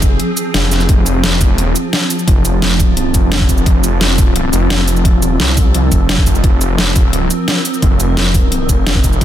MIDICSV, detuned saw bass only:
0, 0, Header, 1, 2, 480
1, 0, Start_track
1, 0, Key_signature, -4, "minor"
1, 0, Tempo, 346821
1, 1229, Time_signature, 4, 2, 24, 8
1, 12796, End_track
2, 0, Start_track
2, 0, Title_t, "Detuned saw bass"
2, 0, Program_c, 0, 39
2, 0, Note_on_c, 0, 29, 98
2, 250, Note_off_c, 0, 29, 0
2, 750, Note_on_c, 0, 29, 105
2, 1210, Note_off_c, 0, 29, 0
2, 1229, Note_on_c, 0, 29, 100
2, 2060, Note_off_c, 0, 29, 0
2, 2060, Note_on_c, 0, 28, 100
2, 2410, Note_off_c, 0, 28, 0
2, 3149, Note_on_c, 0, 29, 99
2, 4330, Note_off_c, 0, 29, 0
2, 4349, Note_on_c, 0, 29, 100
2, 5050, Note_off_c, 0, 29, 0
2, 5068, Note_on_c, 0, 29, 100
2, 6250, Note_off_c, 0, 29, 0
2, 6269, Note_on_c, 0, 29, 98
2, 7100, Note_off_c, 0, 29, 0
2, 7100, Note_on_c, 0, 28, 98
2, 7450, Note_off_c, 0, 28, 0
2, 7470, Note_on_c, 0, 36, 96
2, 7930, Note_off_c, 0, 36, 0
2, 7949, Note_on_c, 0, 36, 100
2, 8170, Note_off_c, 0, 36, 0
2, 8188, Note_on_c, 0, 29, 98
2, 8650, Note_off_c, 0, 29, 0
2, 8669, Note_on_c, 0, 29, 98
2, 8890, Note_off_c, 0, 29, 0
2, 8909, Note_on_c, 0, 29, 99
2, 10090, Note_off_c, 0, 29, 0
2, 10828, Note_on_c, 0, 29, 97
2, 12010, Note_off_c, 0, 29, 0
2, 12029, Note_on_c, 0, 29, 100
2, 12730, Note_off_c, 0, 29, 0
2, 12750, Note_on_c, 0, 29, 98
2, 12796, Note_off_c, 0, 29, 0
2, 12796, End_track
0, 0, End_of_file